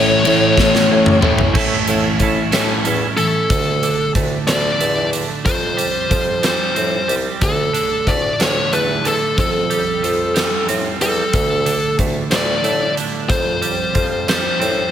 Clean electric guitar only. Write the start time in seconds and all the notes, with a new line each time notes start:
1.53 A2 E3 A3 C#4 E4 A4
1.88 A3 C#4 E4 A4
2.20 A3 C#4 E4 A4
2.52 A3 C#4 E4 A4
2.84 A3 C#4 E4 A4
3.17 A3 C#4 E4 A4
3.50 D2
3.83 D3
4.16 A2
4.48 D3
4.80 A3
5.13 D3
5.44 F2
5.77 G3
6.09 F3
6.43 G3
6.75 C4
7.08 G3
7.41 D2
7.73 D3
8.07 A2
8.40 D3
8.72 A3
9.05 D3
9.37 F2
9.70 G3
10.03 F3
10.34 G3
10.69 C4
11.02 G3
11.34 D2
11.66 D3
11.99 A2
12.32 D3
12.64 A3
12.97 D3
13.29 F2
13.62 G3
13.94 F3
14.28 G3
14.60 C4